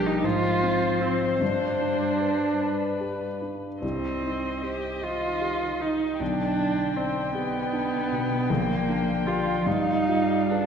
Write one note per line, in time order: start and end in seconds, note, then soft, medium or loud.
0.00 0.20 A#1 medium
0.00 0.27 G3 medium
0.00 0.27 D4 soft
0.00 0.20 G4 soft
0.00 0.26 G4 medium
0.00 0.20 A#4 medium
0.07 0.26 D#4 medium
0.23 1.37 G#2 medium
0.23 1.40 F3 medium
0.23 1.03 F4 loud
0.23 2.63 C5 medium
0.62 1.25 C4 soft
1.01 1.42 C4 medium
1.01 1.37 F4 soft
1.01 1.37 C5 soft
1.41 3.79 G2 medium
1.41 3.18 G3 medium
1.41 3.42 D4 medium
1.81 2.45 D4 soft
2.21 2.85 B4 soft
2.61 3.62 B4 medium
2.61 3.25 D5 soft
3.01 3.66 G4 soft
3.42 3.82 D4 soft
3.82 6.16 C2 medium
3.82 4.65 C4 medium
3.82 6.16 D#5 medium
4.22 4.86 D#4 soft
4.62 5.05 G4 medium
4.62 5.26 C5 soft
5.01 6.22 D#3 medium
5.01 5.83 F4 medium
5.01 5.65 D#5 soft
5.41 6.05 G4 soft
5.80 6.20 D#4 soft
5.80 6.21 D#4 medium
6.20 8.45 B1 medium
6.20 8.49 D3 soft
6.20 6.98 D4 medium
6.20 9.67 G5 soft
6.58 7.20 D4 soft
6.97 7.34 C4 medium
6.97 7.58 D5 soft
7.35 8.50 B3 medium
7.35 7.96 G4 soft
7.73 8.34 D4 soft
8.12 8.50 B2 soft
8.49 9.63 A#1 medium
8.49 9.67 D3 medium
8.49 9.28 A#3 medium
8.89 9.51 D4 soft
9.26 9.68 F4 medium
9.26 9.62 G4 soft
9.26 9.62 D5 soft
9.66 10.66 G2 medium
9.66 10.66 G3 medium
9.66 10.51 D#4 medium
9.66 10.66 F5 medium
10.08 10.66 F4 soft
10.50 10.66 D4 medium
10.50 10.66 G#4 soft
10.50 10.66 B4 soft